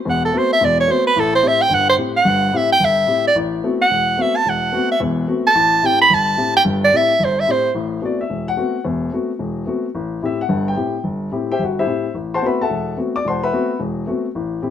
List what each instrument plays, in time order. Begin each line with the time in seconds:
0.05 grand piano E1 E2
0.10 soprano saxophone F#5
0.25 soprano saxophone A4
0.33 grand piano A3 B3 C4 F#4
0.38 soprano saxophone C5
0.53 soprano saxophone E5
0.61 grand piano E1 E2, soprano saxophone D5
0.80 soprano saxophone C#5
0.87 grand piano A3 B3 C4 F#4, soprano saxophone C5
1.07 soprano saxophone B4
1.16 grand piano A1 A2, soprano saxophone A4
1.35 soprano saxophone C5
1.43 grand piano A2 C4 E4 G4
1.48 soprano saxophone E5
1.62 soprano saxophone G5
1.70 grand piano G1 G2
1.74 soprano saxophone F#5
1.89 soprano saxophone C5
1.97 grand piano A2 C4 E4 G4
2.16 soprano saxophone F#5
2.25 grand piano G1 G2
2.53 grand piano A2 C4 E4 G4, soprano saxophone E5
2.72 soprano saxophone G5
2.80 grand piano G1
2.85 soprano saxophone E5
3.07 grand piano A2 C4 E4 G4
3.27 soprano saxophone D5
3.35 grand piano A1
3.63 grand piano A3 B3 C4 F#4
3.82 soprano saxophone F#5
3.91 grand piano E1
4.18 grand piano A3 B3 C4 F#4, soprano saxophone E5
4.36 soprano saxophone A5
4.46 grand piano E1, soprano saxophone F#5
4.72 grand piano A3 B3 C4 F#4
4.92 soprano saxophone E5
5.00 grand piano E1 E2
5.28 grand piano A3 B3 C4 F#4
5.47 soprano saxophone A5
5.55 grand piano A1
5.82 grand piano A2 C4 E4 G4, soprano saxophone G5
6.02 soprano saxophone B5
6.10 grand piano G1, soprano saxophone A5
6.37 grand piano A2 C4 E4 G4
6.57 soprano saxophone G5
6.65 grand piano G1 G2
6.84 soprano saxophone D5
6.92 grand piano A2 C4 E4 G4
6.97 soprano saxophone E5
7.20 grand piano G1
7.25 soprano saxophone C5
7.40 soprano saxophone E5
7.48 grand piano A2 C4 E4 G4, soprano saxophone C5
7.75 grand piano A1 A2
8.02 grand piano A3 B3 C4 F#4 D5
8.21 grand piano E5
8.30 grand piano E1
8.48 grand piano F#5
8.57 grand piano A3 B3 C4 F#4
8.85 grand piano E1 E2
9.12 grand piano A3 B3 C4 F#4
9.39 grand piano E1
9.66 grand piano A3 B3 C4 F#4
9.95 grand piano A1
10.22 grand piano A2 C4 E4 G4 E5
10.41 grand piano F#5
10.49 grand piano G1 G2
10.68 grand piano G5
10.76 grand piano A2 C4 E4 G4
11.04 grand piano G1
11.32 grand piano A2 C4 E4 G4
11.52 grand piano G4 C5 E5 G5
11.59 grand piano G1 F#5
11.64 grand piano F#4
11.79 grand piano E4 G4 C5 E5
11.86 grand piano A2 C4 E4 G4
12.14 grand piano A1
12.34 grand piano C5 F#5 A5 C6
12.42 grand piano A3 B3 C4 F#4
12.46 grand piano B4 E5 F#5 B5
12.62 grand piano A4 E5 F#5 A5
12.70 grand piano E1
12.97 grand piano A3 B3 C4 F#4
13.16 grand piano D5 D6
13.25 grand piano E1 C5 F#5 A5 C6
13.43 grand piano B4 E5 F#5 B5
13.52 grand piano A3 B3 C4 F#4
13.80 grand piano E1
14.07 grand piano A3 B3 C4 F#4
14.35 grand piano A1
14.62 grand piano A2 C4 E4 G4